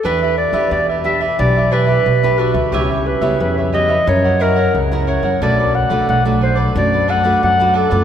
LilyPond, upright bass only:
\new Staff \with { instrumentName = "Upright bass" } { \clef bass \time 4/4 \key e \minor \tempo 4 = 89 e,8. e,16 e,4 b,,4 b,,8. d,16 | cis,8. cis,16 f,4 fis,4 cis,8. fis,16 | b,,8. b,,16 b,,4 fis,4 fis,8. fis,16 | }